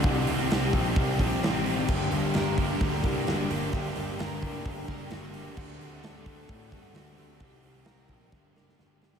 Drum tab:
CC |----------------|x---------------|----------------|x---------------|
HH |o-o-o-o-o-o-o-o-|--o-o-o-o-o-o-o-|o-o-o-o-o-o-o-o-|--o-o-o-o-o-o-o-|
SD |----o-------o---|----o-------o---|----o-------o---|----o-------o---|
BD |o-----o-o-o-----|o-----o-o-o-----|o-----o-o-o-----|o-----o-o-o-----|

CC |----------------|
HH |o-o-o-o---------|
SD |----o---o-ooo-oo|
BD |o-----o-o-------|